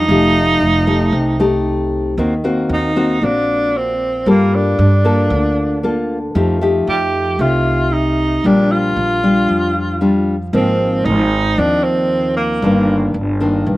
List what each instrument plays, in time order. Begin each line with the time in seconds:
Already playing: tenor saxophone D#4
0.08 upright bass F1, nylon-string guitar F3 A3 D#4 G4
0.60 upright bass F1
0.87 nylon-string guitar A3 D#4 G4
1.12 upright bass C2, nylon-string guitar C3
1.40 nylon-string guitar A3 D#4 G4
2.18 upright bass D#2, nylon-string guitar D#3 A#3 C4 F#4
2.44 nylon-string guitar A#3 C4 F#4
2.69 upright bass D#2, tenor saxophone D#4
2.96 nylon-string guitar A#3 C4 F#4
3.22 upright bass A#1, nylon-string guitar A#2 A#3 C4 F#4, tenor saxophone D4
3.77 tenor saxophone C4
4.26 upright bass G2, nylon-string guitar G3 A#3 F4 A4
4.30 tenor saxophone A#3
4.54 tenor saxophone D4
4.79 upright bass G2
5.05 nylon-string guitar A#3 F4 A4
5.30 upright bass D2, nylon-string guitar D3
5.83 nylon-string guitar A#3 F4 A4
6.35 upright bass F2, nylon-string guitar F3 A3 D#4 G4
6.61 nylon-string guitar A3 D#4 G4
6.87 upright bass F2, tenor saxophone G4
7.39 upright bass C2, nylon-string guitar C3 A3 D#4 G4, tenor saxophone F4
7.93 tenor saxophone D#4
8.44 upright bass A#1, nylon-string guitar A#2 G3 D4 F4, tenor saxophone D4
8.71 tenor saxophone F4
8.96 upright bass A#1
9.23 nylon-string guitar G3 D4 F4
9.49 upright bass F2, nylon-string guitar F3
10.01 nylon-string guitar G3 D4 F4
10.53 upright bass G#1, nylon-string guitar G#2 F3 A#3 C4, tenor saxophone C4
11.05 upright bass G#1, tenor saxophone D#4
11.58 upright bass D#2, nylon-string guitar D#3 F3 A#3 C4, tenor saxophone D4
11.83 tenor saxophone C4
12.37 tenor saxophone A#3
12.62 upright bass G1, nylon-string guitar G2 D#3 A#3 D4
13.14 upright bass G1
13.40 nylon-string guitar D#3 A#3 D4
13.66 upright bass A#1, nylon-string guitar G2